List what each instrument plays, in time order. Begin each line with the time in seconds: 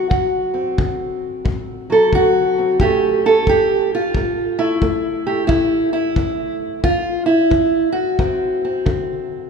Already playing: steel-string acoustic guitar F#3
0.10 steel-string acoustic guitar D2 F#4, kick
0.54 steel-string acoustic guitar C4
0.78 steel-string acoustic guitar D3, kick
1.45 steel-string acoustic guitar A2, kick
1.90 steel-string acoustic guitar F#3 A4
2.13 steel-string acoustic guitar D3 F#4, kick
2.59 steel-string acoustic guitar C4
2.80 steel-string acoustic guitar A2 A3 C#4 G4, kick
3.26 steel-string acoustic guitar C#4 A4
3.47 steel-string acoustic guitar A3 G4, kick
3.95 steel-string acoustic guitar F4
4.15 steel-string acoustic guitar A2, kick
4.59 steel-string acoustic guitar A3 E4
4.82 steel-string acoustic guitar A3, kick
5.27 steel-string acoustic guitar A3 G4
5.47 steel-string acoustic guitar A2 E4, kick
5.93 steel-string acoustic guitar E4
6.16 steel-string acoustic guitar E3, kick
6.84 steel-string acoustic guitar E2 F4, kick
7.26 steel-string acoustic guitar E4
7.50 steel-string acoustic guitar E3, kick
7.92 steel-string acoustic guitar F#4
8.19 steel-string acoustic guitar D2 C4, kick
8.65 steel-string acoustic guitar C4
8.86 steel-string acoustic guitar D3, kick